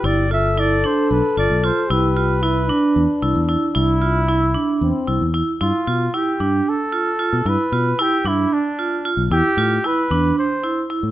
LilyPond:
<<
  \new Staff \with { instrumentName = "Flugelhorn" } { \time 7/8 \key g \mixolydian \tempo 4 = 113 d''8 e''8 d''8 c''8 b'8 d''8 c''8 | b'2. r8 | e'2~ e'8 r4 | f'4 g'4 a'4. |
b'4 g'8 e'8 d'4 r8 | g'4 b'4 c''4 r8 | }
  \new Staff \with { instrumentName = "French horn" } { \time 7/8 \key g \mixolydian g'8 a'2. | g'4 e'8 d'2~ | d'4. r8 c'4 r8 | r2. r8 |
r2. r8 | r2. r8 | }
  \new Staff \with { instrumentName = "Vibraphone" } { \time 7/8 \key g \mixolydian e'8 f'8 e'8 d'4 f'8 f'8 | e'8 f'8 e'8 d'4 e'8 e'8 | e'8 f'8 e'8 d'4 e'8 e'8 | e'8 f'8 e'8 d'4 f'8 f'8 |
e'8 f'8 e'8 d'4 f'8 f'8 | e'8 f'8 e'8 d'4 e'8 e'8 | }
  \new Staff \with { instrumentName = "Fingered electric bass" } { \clef bass \time 7/8 \key g \mixolydian g,,2 b,,16 r16 g,,16 b,,8 r16 | c,2 e,16 r16 c,16 e,8 r16 | c,2 e,16 r16 c,16 e,8 r16 | g,16 r16 b,8 r8 g,8 r4 r16 b,16 |
g,16 r16 b,8 r8 g,8 r4 r16 b,,16 | e,16 r16 a,8 r8 e,8 r4 r16 a,16 | }
>>